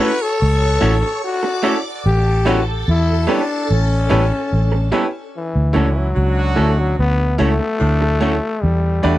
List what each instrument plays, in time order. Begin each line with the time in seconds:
Already playing: string machine C#5 C#6
0.00 grand piano E4 F#4 A4 C#5, clean electric guitar A4, trombone B4
0.22 trombone A4
0.42 fingered electric bass C#2
0.81 fingered electric bass A1, clean electric guitar A3 C#4 F#4 A4, grand piano E4 F#4 A4 C#5
1.02 muted clean electric guitar stroke
1.21 trombone F#4, string machine D5 D6
1.43 muted clean electric guitar stroke
1.63 clean electric guitar A3 C#4 F#4 A4, grand piano E4 F#4 A4 C#5
2.04 fingered electric bass A1, trombone G4, string machine A4 A5
2.45 clean electric guitar G3 B3 C#4 A4, grand piano E4 G4 B4 C#5, trombone F#4
2.88 fingered electric bass E2, trombone E4
3.27 clean electric guitar G3 B3 C#4 A4, trombone D4, grand piano E4 G4 B4 C#5
3.71 fingered electric bass A1, trombone C#4
4.10 fingered electric bass A1, clean electric guitar G3 B3 C#4 A4, grand piano E4 G4 B4 C#5
4.31 muted clean electric guitar stroke
4.53 fingered electric bass A1
4.72 muted clean electric guitar stroke
4.92 clean electric guitar G3 B3 C#4 A4, grand piano E4 G4 B4 C#5
5.37 trombone E3
5.56 fingered electric bass D2
5.73 fingered electric bass C#2, horn section E3 C#4 E4, clean electric guitar A3 C#4 F#4 A4, grand piano E4 F#4 A4 C#5
5.78 trombone D3
5.98 trombone F#3
6.14 fingered electric bass C#2, horn section F#3 C#4 D4 F#4
6.56 fingered electric bass D2, clean electric guitar A3 C#4 F#4 A4, trombone A3, grand piano E4 F#4 A4 C#5
6.79 trombone F#3
6.99 fingered electric bass D2, trombone B3
7.38 fingered electric bass C#2, clean electric guitar A3 C#4 F#4 A4, trombone A3, grand piano E4 F#4 A4 C#5
7.59 muted clean electric guitar stroke
7.79 fingered electric bass D2, horn section A2 D3 F#3 D4
8.01 muted clean electric guitar stroke
8.20 clean electric guitar A3 C#4 F#4 A4, grand piano E4 F#4 A4 C#5
8.63 fingered electric bass E2, trombone G3
9.03 fingered electric bass E2, clean electric guitar G3 D4 E4 B4, trombone A3, grand piano F#4 G4 B4 D5